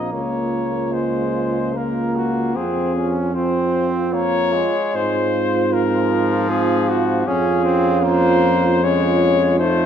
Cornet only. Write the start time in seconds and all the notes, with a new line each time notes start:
Already playing: D#5
0.13 C#5
0.93 C5
1.77 A#4
2.16 F#4
2.56 G#4
3.35 C5
4.14 C#5
4.95 C5
5.73 A#4
6.49 G#4
6.89 F#4
7.27 G#4
8.05 C5
8.84 C#5
9.59 C5